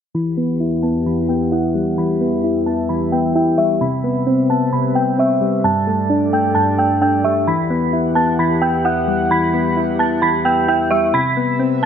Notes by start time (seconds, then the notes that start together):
0.14 E2 E3 G4 F#5 B5 B6
0.37 B3
0.60 E4
0.83 B3 A5 A6
1.06 E3 B5 B6
1.29 B3 G5 G6
1.52 E4 F#5 F#6
1.75 G3
1.98 E3 E5 B5 B6
2.21 B3
2.44 E4
2.66 B3 A5 A6
2.89 E3 B5 B6
3.12 B3 G5 G6
3.35 E4 G5 G6
3.58 G3 E5 E6
3.81 C3 G3 B4 B5 B6
4.04 B3
4.27 C4
4.50 B3 A5 A6
4.73 C3 B5 B6
4.95 B3 G5 G6
5.18 C4 E5 E6
5.41 G3
5.64 G2 A4 D5 A5 A6
5.87 A3
6.10 D4
6.33 A3 G5 G6
6.55 G2 A5 A6
6.78 A3 G5 G6
7.01 D4 G5 G6
7.24 G3 E5 E6
7.47 E2 E3 G4 F#5 B5 B6
7.70 B3
7.93 E4
8.15 B3 A5 A6
8.39 E3 B5 B6
8.62 B3 G5 G6
8.85 E4 F#5 F#6
9.08 G3
9.31 E3 B5 B6
9.54 B3
9.77 E4
9.99 B3 A5 A6
10.22 E3 B5 B6
10.45 B3 G5 G6
10.68 E4 G5 G6
10.91 G3 E5 E6
11.14 C3 G3 B4 E5 B5 B6
11.37 B3
11.59 C4
11.82 B3